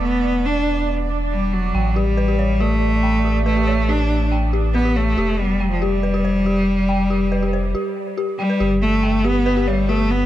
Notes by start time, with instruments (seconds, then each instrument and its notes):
Already playing: sub bass E1, synth texture D5
0.03 cello B3
0.46 cello D4
1.32 cello G3
1.53 cello F#3
1.75 sub bass A1, synth bell G5
1.96 cello G3, synth bell G4
2.17 synth bell B4
2.28 synth bell G4
2.39 synth bell C#5
2.60 cello A3, synth bell G4
3.03 synth bell G5
3.25 synth bell G4
3.46 cello A3, synth bell B4
3.57 synth bell G4
3.67 synth bell C#5
3.89 cello D4, synth bell G4
4.32 synth bell G5
4.53 synth bell G4
4.75 cello B3, synth bell B4
4.85 synth bell G4
4.96 cello A3, synth bell C#5
5.17 sub bass F1, synth bell G4
5.39 cello G3
5.60 synth bell G5
5.71 cello F3
5.82 cello G3, synth bell G4
6.03 synth bell B4
6.14 synth bell G4
6.25 synth bell C5
6.46 synth bell G4
6.89 synth bell G5
7.10 synth bell G4
7.32 synth bell B4
7.42 synth bell G4
7.53 synth bell C5
7.75 synth bell G4
8.17 synth bell G4
8.39 cello G3, synth bell G5
8.50 synth bell B4
8.60 sub bass G1, synth bell G4
8.82 cello A3
9.03 synth bell G5
9.24 cello B3, synth bell G4
9.46 synth bell B4
9.57 synth bell G4
9.67 cello G3, synth bell C#5
9.89 cello A3, synth bell G4
10.10 cello B3